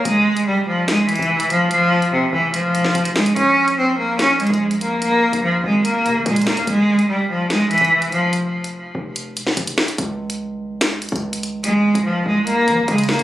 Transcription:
<<
  \new Staff \with { instrumentName = "Cello" } { \clef bass \time 4/4 \key f \minor \tempo 4 = 145 aes4 g8 f8 aes8 e4 f8 | f4 c8 e8 f4. aes8 | des'4 c'8 bes8 des'8 aes4 bes8 | bes4 f8 aes8 bes4 aes8 bes8 |
aes4 g8 f8 aes8 e4 f8 | r1 | r1 | aes4 f8 aes8 bes4 aes8 bes8 | }
  \new Staff \with { instrumentName = "808-style bass" } { \clef bass \time 4/4 \key f \minor f,,2~ f,,8. f,,4~ f,,16~ | f,,4. f,,4 e,,16 f,,16 f,,8 r8 | bes,,2~ bes,,8. bes,,4~ bes,,16~ | bes,,8. bes,,8. aes,,4 des16 aes,,16 bes,8. des,16 |
f,,2~ f,,8. f,,4~ f,,16~ | f,,4. f,,4 e,,16 f,,16 f,,8 r8 | des,2~ des,8. des,4~ des,16~ | des,8. des,8. c,4 f16 c,16 des8. f,16 | }
  \new DrumStaff \with { instrumentName = "Drums" } \drummode { \time 4/4 hh8. hh16 r4 \tuplet 3/2 { <hh sn>16 r16 r16 hh16 hh16 hh16 } r16 hh16 hh8 | hh8. hh16 r4 hh8 hh16 sn16 hh16 hh16 <hho sn>16 hh16 | hh8. hh16 r4 \tuplet 3/2 { <hh sn>16 r16 r16 hh16 hh16 hh16 } r16 hh16 hh8 | hh8. hh16 r4 hh8 hh8 hh16 hh32 hh32 <hh hho sn>32 hh32 hh16 |
hh8. hh16 r4 \tuplet 3/2 { <hh sn>16 r16 r16 hh16 hh16 hh16 } r16 hh16 hh8 | hh8. hh16 r4 hh8 hh16 sn16 hh16 hh16 <hho sn>16 hh16 | hh8. hh16 r4 \tuplet 3/2 { <hh sn>16 r16 r16 hh16 hh16 hh16 } r16 hh16 hh8 | hh8. hh16 r4 hh8 hh8 hh16 hh32 hh32 <hh hho sn>32 hh32 hh16 | }
>>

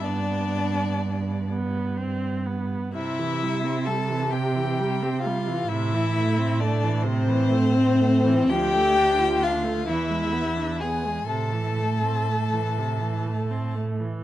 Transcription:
<<
  \new Staff \with { instrumentName = "Violin" } { \time 6/8 \key a \minor \tempo 4. = 42 d''4. r4. | e''4 a''8 g''4 f''8 | e''4 d''8 c''4. | g''4 f''8 e''4 gis''8 |
a''2~ a''8 r8 | }
  \new Staff \with { instrumentName = "Violin" } { \time 6/8 \key a \minor d'4. r4. | e'4 a'8 g'4 f'8 | e'4 d'8 c'4. | g'4 f'8 e'4 gis'8 |
a'2~ a'8 r8 | }
  \new Staff \with { instrumentName = "Viola" } { \clef bass \time 6/8 \key a \minor b4. b8 c'8 b8 | c16 e16 g16 c'16 g16 e16 c16 e16 g16 c'16 g16 e16 | c16 e16 a16 c'16 a16 e16 c16 e16 a16 c'16 a16 e16 | f16 a16 d'16 f'16 d'16 a16 e16 gis16 b16 d'16 b16 gis16 |
c16 e16 a16 c'16 a16 e16 c16 e16 a16 c'16 a16 e16 | }
  \new Staff \with { instrumentName = "Cello" } { \clef bass \time 6/8 \key a \minor g,2. | c2. | a,2. | d,4. e,4. |
a,2. | }
>>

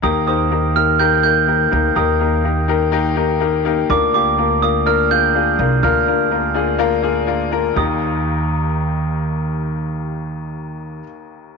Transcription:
<<
  \new Staff \with { instrumentName = "Glockenspiel" } { \time 4/4 \key ees \major \tempo 4 = 124 ees'''8 ees'''4 f'''8 g'''8 g'''4. | ees'''2.~ ees'''8 r8 | d'''8 d'''4 ees'''8 f'''8 g'''4. | f'''2.~ f'''8 r8 |
ees'''1~ | ees'''1 | }
  \new Staff \with { instrumentName = "Upright piano" } { \time 4/4 \key ees \major <bes ees' g' bes'>8 <bes ees' g' c''>8 <bes ees' g' bes'>8 <bes ees' g' bes'>8 <bes ees' g' bes'>8 <bes ees' g' bes'>8 <bes ees' g' bes'>8 <bes ees' g' bes'>8 | <bes ees' g' bes'>8 <bes ees' g' bes'>8 <bes ees' g' bes'>8 <bes ees' g' bes'>8 <bes ees' g' bes'>8 <bes ees' g' bes'>8 <bes ees' g' bes'>8 <bes ees' g' bes'>8 | <bes d' f' bes'>8 <bes d' f' g'>8 <bes d' f' bes'>8 <bes d' f' bes'>8 <bes d' f' bes'>8 <bes d' f' aes'>8 <bes d' f' aes'>8 <bes d' f' bes'>8 | <bes d' f' bes'>8 <bes d' f' bes'>8 <bes d' f' bes'>8 <bes d' f' aes'>8 <bes d' f' bes'>8 <bes d' f' aes'>8 <bes d' f' bes'>8 <bes d' f' bes'>8 |
<bes ees' g' bes'>1~ | <bes ees' g' bes'>1 | }
  \new Staff \with { instrumentName = "Upright piano" } { \clef bass \time 4/4 \key ees \major ees4. r2 r8 | ees4. r2 r8 | d4. r2 r8 | d4. r2 r8 |
ees,1~ | ees,1 | }
  \new Staff \with { instrumentName = "Upright bass" } { \clef bass \time 4/4 \key ees \major ees,2.~ ees,8 d,8 | ees,1 | d,2.~ d,8 c,8 | d,1 |
ees,1~ | ees,1 | }
>>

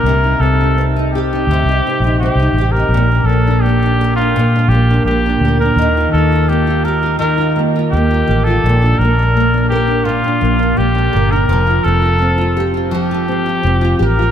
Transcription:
<<
  \new Staff \with { instrumentName = "Trumpet" } { \time 4/4 \key bes \major \tempo 4 = 84 bes'8 a'8 r8 g'4. g'8. bes'16~ | bes'8 a'8 g'8. f'8. g'8 g'8. bes'16~ | bes'8 a'8 g'8 bes'8 bes'8 r8 g'8. a'16~ | a'8 bes'4 g'8 f'4 g'8. bes'16~ |
bes'8 a'4 r8 g'4. bes'8 | }
  \new Staff \with { instrumentName = "Nylon-string guitar" } { \time 4/4 \key bes \major c16 ees'16 c'16 ees'16 c'16 ees'16 g'16 ees'16 c16 ees'16 c'16 ees'16 c'16 ees'16 g'16 ees'16 | bes,16 d'16 bes16 d'16 bes16 d'16 bes'16 d'16 bes,16 d'16 bes16 d'16 bes16 d'16 bes'16 d'16 | ees16 f'16 bes16 f'16 bes16 f'16 g'16 f'16 ees16 f'16 bes16 f'16 bes16 f'16 g'16 f'16 | bes,16 d'16 bes16 d'16 bes16 d'16 bes'16 d'16 bes,16 d'16 bes16 d'16 bes16 d'16 bes'16 d'16 |
f16 f'16 c'16 f'16 c'16 f'16 g'16 f'16 f16 f'16 c'16 f'16 c'16 f'16 g'16 f'16 | }
  \new Staff \with { instrumentName = "Fingered electric bass" } { \clef bass \time 4/4 \key bes \major c,8 c,4. d,16 c,16 r16 bes,,8 c,16 a,,8 | bes,,8 bes,,4.~ bes,,16 r16 bes,,8 bes,,8 d,8 | ees,8 ees,2 f,8 ees,8 a,,8 | bes,,8 bes,,4.~ bes,,16 r16 bes,,8 bes,,8 g,,8 |
f,,8 f,,2 g,,8 f,,8 a,,8 | }
>>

